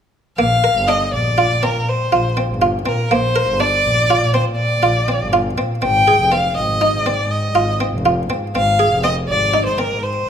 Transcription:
0.38 A#1 A#3 F5
0.64 A#4
0.76 G1
0.88 D4 D#5
1.12 A#1 D5
1.38 F4
1.50 A#2
1.63 C4 A#4
1.75 A#2
1.89 C5
2.12 A#1 F4
2.37 C4
2.49 G1
2.62 F4
2.86 A#2 C4 A#4
3.11 A#1 A#3 C5
3.36 A#4
3.48 G1
3.60 D4 D5
3.85 A#1
4.10 F4
4.21 A#2
4.34 C4 C5
4.46 A#2
4.56 D5
4.83 A#1 F4
5.08 C4
5.20 G1
5.33 F4
5.57 A#2 C4
5.82 G#1 C4 G5
6.08 G#4
6.20 F1
6.32 C4 F5
6.57 G#1 D#5
6.81 D#4
6.94 G#2
7.06 C4 D5
7.19 G#2
7.31 D#5
7.55 G#1 F4
7.80 C4
7.93 F1
8.06 F4
8.30 G#2 C4
8.55 G#1 C4 F5
8.79 G#4
8.92 F1
9.04 C4 D#5
9.28 G#1 D5
9.54 D#4
9.66 G#2 C5
9.78 C4 A#4
9.91 G#2
10.03 C5

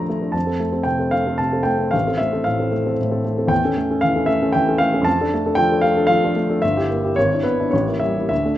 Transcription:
Already playing: F3 A3 D4 A4 C5 D5 A#5
0.09 A3
0.22 D4 A4
0.32 F2 A5
0.46 C4 A4
0.60 A3
0.72 C4 A4
0.83 C3 G5
0.99 C4 A4
1.11 A3 F5
1.26 C4 A4
1.38 C3 A5
1.52 C4 A4
1.63 A3 G5
1.79 C4 A4
1.91 A1 F5
2.07 C4 A4
2.18 A3 E5
2.33 C4 A4
2.44 A2 F5
2.59 C4 A4
2.72 A3
2.86 C4 A4
3.00 A2
3.11 C4 A4
3.25 A3
3.38 C4 A4
3.47 E2 G5
3.64 C#4 A4
3.77 A3
3.91 C#4 A4
4.01 E3 F5
4.16 C#4 A4
4.26 A3 E5
4.42 C#4 A4
4.53 E3 G5
4.68 C#4 A4
4.78 A3 F5
4.94 C#4 A4
5.02 F2 A5
5.21 D4 A4
5.34 A3
5.46 D4 A4
5.55 F3 G5
5.71 D4 A4
5.81 A3 F5
5.96 D4 A4
6.07 F3 F5
6.24 D4 A4
6.36 A3
6.49 D4 A4
6.62 G1 E5
6.77 E4 G4
6.90 A#3
7.04 E4 G4
7.16 G#1 C#5
7.33 D4 E4
7.43 B3 B4
7.60 D4 E4
7.71 A1 C#5
7.87 A#3 E4
8.00 G3 E5
8.17 A#3 E4
8.29 D2 E5
8.45 A3 D4

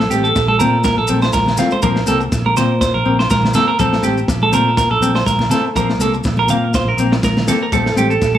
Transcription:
Already playing: A4
0.00 snare
0.10 A1 C4 G4, high conga, maracas
0.15 A3
0.24 A4, maracas
0.36 A#1, kick, snare, maracas
0.48 A4, high conga
0.59 A#2 A3 C4 A#4, low conga, maracas
0.84 A#4, kick, snare, high conga, maracas
0.98 A#1 A4
1.07 A#1 C4, maracas
1.12 A3
1.22 C5, snare, maracas
1.33 A#1 A#4, kick, snare, high conga, maracas
1.46 snare, low conga
1.57 A3 C4 F4, snare, low conga, maracas
1.71 C5, high conga, maracas
1.82 A#1 F3 A#3 C4 A#4, kick, maracas
1.96 snare
2.06 C2 A#3 C4 A4, snare, high conga, maracas
2.20 muted clean electric guitar stroke, maracas
2.32 A#1, kick, snare, maracas
2.46 A#4, high conga
2.57 A#2 A#3 C4 C5, snare, low conga, maracas
2.81 C5, kick, snare, maracas
2.94 A#1 A#4
3.05 A#1 A#3 C4
3.19 C5, snare
3.30 A#1 A#4, kick, snare, high conga, maracas
3.43 snare, low conga
3.53 A#3 C4 A4, snare, low conga, maracas
3.68 A#4
3.79 A#1 F3 A3 C4 A4, kick, maracas
3.93 snare
4.02 A1 A3 C4 G4, snare, high conga, maracas
4.18 maracas
4.28 A#1, kick, snare, maracas
4.42 A4, high conga
4.52 A#2 A3 C4 A#4, low conga, maracas
4.77 A#4, kick, snare, maracas
4.91 A#1 A4
5.01 A#1 A3 C4, maracas
5.15 C5, snare
5.26 A#1 A#4, kick, snare, high conga, maracas
5.39 snare, low conga
5.50 C4 A4, snare, low conga, maracas
5.54 A3
5.75 A#1 F3 A#3 C4 A#4, kick, maracas
5.90 snare
5.99 C2 C4 A4, snare, high conga, maracas
6.03 A#3
6.14 muted clean electric guitar stroke, maracas
6.24 A#1, kick, snare, maracas
6.37 A#4, high conga
6.48 A#2 A#3 C4 F5, low conga, maracas
6.74 C5, kick, snare, maracas
6.85 A#1 A#4
6.97 A#1 C4, maracas
7.01 A#3
7.12 muted clean electric guitar stroke, snare
7.23 A#1 A#4, kick, snare, high conga, maracas
7.37 snare, low conga
7.48 A#3 C4 A4, snare, low conga, maracas
7.63 A#4
7.72 A#1 F3 A3 C4 A4, kick, maracas
7.86 snare
7.95 A1 C4 G4, high conga, maracas
7.99 A3
8.10 A4, maracas
8.22 A#1, kick, snare, maracas
8.35 A4, high conga

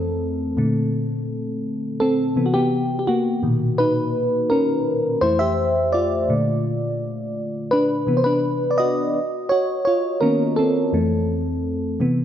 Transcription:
Already playing: F2 E3 A3 C4 A4
0.57 A#2 D3 A3
2.00 C4 A4
2.36 C3 E3 B3
2.46 F#4
2.54 B3 G4
2.99 G4
3.07 A#3 F#4
3.43 A#2 B2 D#3
3.78 D#4 B4
4.50 C#4 A#4
5.21 F2 E3 A3 E4 C5
5.39 G4 E5
5.92 F4 D5
6.29 A#2 D3 A3
7.71 D4 B4
8.07 C3 E3 B3
8.17 C5
8.24 D4 B4
8.71 D5
8.78 F#4 D#5
9.49 F#4 C#5
9.85 F4 C#5
10.21 D#3 A#3 B3 C#4 A#4
10.56 C4 A4
10.93 F2 E3 A3
12.00 C3 E3 B3

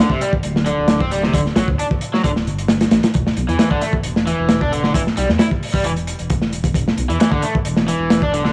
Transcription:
0.00 snare
0.10 C3, kick
0.21 G3, closed hi-hat
0.33 kick
0.43 D1, closed hi-hat
0.56 snare
0.66 D3, closed hi-hat
0.78 D1
0.88 snare, closed hi-hat
1.00 C4, kick
1.11 G3, closed hi-hat
1.23 C3, snare
1.34 D1 D3, kick, closed hi-hat
1.46 snare
1.56 A1 F#3, snare, closed hi-hat
1.68 D2, kick
1.79 D4, closed hi-hat
1.91 kick
2.01 closed hi-hat
2.14 F#3, snare
2.24 D1 D3, kick, closed hi-hat
2.36 snare
2.47 G1, closed hi-hat
2.58 closed hi-hat
2.68 snare, closed hi-hat
2.81 snare, closed hi-hat
2.91 A1, snare, closed hi-hat
3.03 snare, closed hi-hat
3.14 E1, kick, closed hi-hat
3.27 snare
3.37 B1, closed hi-hat
3.49 E2 E3, closed hi-hat
3.59 E3, snare, closed hi-hat
3.71 D3, kick
3.81 A3, closed hi-hat
3.93 kick
4.03 E1, closed hi-hat
4.16 snare
4.27 E3, closed hi-hat
4.39 E1
4.49 snare, closed hi-hat
4.61 D4, kick
4.72 D3, closed hi-hat
4.84 D3, snare
4.94 E1 E3, kick, closed hi-hat
5.07 snare
5.17 B1 G3, closed hi-hat
5.29 E2, snare
5.39 E4, snare, closed hi-hat
5.51 kick
5.63 open hi-hat
5.74 G3, kick
5.84 E1 E3, closed hi-hat
5.96 closed hi-hat
6.07 closed hi-hat
6.19 E1, closed hi-hat
6.30 kick, closed hi-hat
6.42 snare
6.53 closed hi-hat
6.64 kick, closed hi-hat
6.74 E1, kick, closed hi-hat
6.88 snare
6.98 B1, closed hi-hat
7.09 E2 E3, closed hi-hat
7.20 E3, snare, closed hi-hat
7.32 D3, kick
7.42 A3, closed hi-hat
7.55 kick
7.65 E1, closed hi-hat
7.76 snare
7.88 E3, closed hi-hat
8.00 E1
8.10 snare, closed hi-hat
8.22 D4, kick
8.33 D3, closed hi-hat
8.45 D3, snare

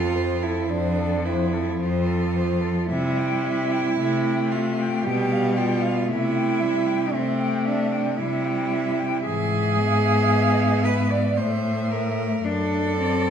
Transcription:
Already playing: F2 F3 F4 A4
0.15 C5
0.42 E4 A4
0.69 F2 D4 C5
0.98 A4
1.25 E4 C5
1.53 A4
1.79 F2 F4 C5
2.07 A4
2.36 C5
2.62 A4
2.88 C3 G3 E4 E5
3.18 G5
3.44 E5
3.72 G5
3.97 C3 A3 E5
4.26 G5
4.51 F4 E5
4.80 G5
5.04 B2 G3 G4 G5
5.32 F5
5.57 F4 G5
5.81 F5
6.08 C3 A3 E4 E5
6.35 G5
6.60 G3 E5
6.86 G5
7.14 C3 A3 C4 E5
7.39 G5
7.65 D4 E5
7.92 G5
8.18 C3 G3 E4 E5
8.45 G5
8.73 E5
8.99 G5
9.25 G#2 E3 G#4 E5
9.79 B3
10.84 B4
11.11 D5
11.37 A2 A3 C5 E5
11.91 A#4
12.44 F#2 D4 A4 D5
12.98 C4

